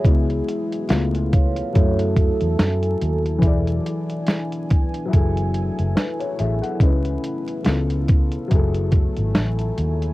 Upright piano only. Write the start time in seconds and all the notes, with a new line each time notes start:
0.04 G#3 B3 E4
0.89 A3 B3 F4
1.73 F#3 A3 E4
3.39 E3 E4
3.44 G#4 D5
5.05 F#3 E4
5.11 G#4 A4
5.95 B4
6.20 E4 C#5
6.39 G#4 E5
6.62 A4 F#5
6.79 C#3 C#4 D#4
6.83 B4
6.88 E4
7.63 C#3 B3 F4 A4
8.48 F#3 E4
8.53 G#4 A4